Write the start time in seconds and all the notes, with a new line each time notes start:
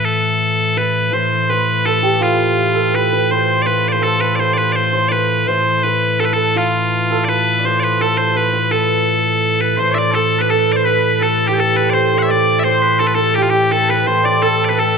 Already playing: A2 E3
0.05 A4
0.77 B4
1.12 A2 E3 C5
1.50 B4
1.85 A4
2.03 G4
2.20 F4
2.75 A4
2.94 B4
3.12 B4
3.31 C5
3.62 B4 D5
3.66 B4
3.88 C5 D5
3.94 C5
4.02 A4
4.20 B4
4.36 C5 D5
4.40 C5
4.53 B4 D5
4.58 B4
4.72 C5 D5
4.93 C5
5.09 B4 D5
5.47 A2 E3 C5
5.83 B4
6.20 A4
6.25 B4
6.33 A4
6.56 F4
7.11 A4
7.25 B4 D5
7.29 B4
7.59 D5
7.65 C5
7.80 B4 D5
8.01 A4
8.17 C5
8.35 B4
8.53 B4
8.71 A4
9.60 B4
9.77 A2 E3 C5
9.94 D5 E5
9.98 D5
10.12 A4
10.39 B4
10.49 A4
10.72 C5 D5
10.84 B4
11.20 A4
11.47 G4
11.57 A4
11.75 B4
11.90 C5 D5
11.94 C5
12.13 C5
12.18 F#5
12.23 E5
12.28 D5
12.59 E5
12.64 C5
12.83 B4
13.00 A4
13.07 B4
13.14 A4
13.35 G4
13.43 F4
13.50 G4
13.71 A4
13.89 B4
14.07 A2 E3 C5
14.24 D5
14.41 A4
14.65 B4 D5
14.69 B4
14.76 A4